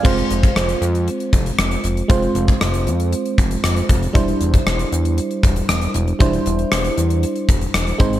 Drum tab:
CC |x---------------|----------------|----------------|----------------|
HH |-xxxxxxxxxxxxxxx|xxxxxxxxxxxxxxxx|xxxxxxxxxxxxxxxx|xxxxxxxxxxxxxxxx|
SD |----r-------r---|----r-------r---|----r-------r---|----r-------r---|
BD |o--o------o-----|o--o------o---o-|o--o------o-----|o---------o---o-|